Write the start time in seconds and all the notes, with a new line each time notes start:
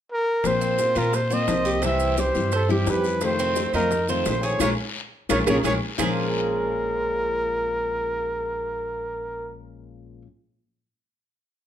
0.12 A#4
0.44 A#1 F3 A#3 C4 F4 C5, high bongo, long guiro, claves, maracas
0.61 C4, maracas
0.78 F3 A#3 C4 F4, high bongo, short guiro, maracas
0.95 A#2 A#3 C4 F4 A#4, short guiro, claves, maracas
1.13 C5, muted steel-string acoustic guitar stroke, high bongo, long guiro, maracas
1.30 A#3 C4 F4 C5 D#5, maracas
1.48 C2 F3 A#3 C4 F4, high bongo, low bongo, short guiro, claves, maracas
1.65 G4, short guiro, maracas
1.82 C3 E3 G3 C4 E4 E5, high bongo, long guiro, claves, maracas
2.00 high bongo, maracas
2.17 E3 G3 C4 E4 G4 C5, high bongo, short guiro, maracas
2.35 G2 E3 G3 C4 E4, short guiro, maracas
2.52 A4 C5, muted steel-string acoustic guitar stroke, high bongo, long guiro, claves, maracas
2.69 E3 G3 C4 E4 G4, high bongo
2.86 F2 E3 G3 C4 E4 B4, high bongo, low bongo, short guiro, maracas
3.04 high bongo, short guiro, maracas
3.21 C3 D#3 A3 C4 F4 C5, high bongo, long guiro, claves, maracas
3.39 C4, maracas
3.56 D#3 A3 C4 F4, high bongo, short guiro, maracas
3.73 F2 D#3 A3 C4 D#4 F4 A#4, short guiro, claves, maracas
3.91 muted steel-string acoustic guitar stroke, high bongo, long guiro, maracas
4.09 D#3 A3 C4 F4 C5, maracas
4.25 A#1 D#3 A3 C4 F4 C5, high bongo, low bongo, short guiro, claves, maracas
4.43 G#4 C#5, short guiro, maracas
4.60 A#1 G#3 A#3 C#4 F4 G#4 A#4 C#5, low bongo, long guiro, claves, maracas
5.29 A#1 G#3 A#3 C#4 F4 G#4 A#4 C#5, low bongo, long guiro, claves, maracas
5.46 A#1 G#3 A#3 C#4 F4 G#4 A#4 C#5, low bongo, long guiro, claves, maracas
5.64 A#1 G#3 A#3 C#4 F4 G#4 A#4 C#5, low bongo, long guiro, claves, maracas
5.98 A#1 A#2 F3 G#3 A#3 C#4 F4 G#4 A#4, low bongo, long guiro, claves, maracas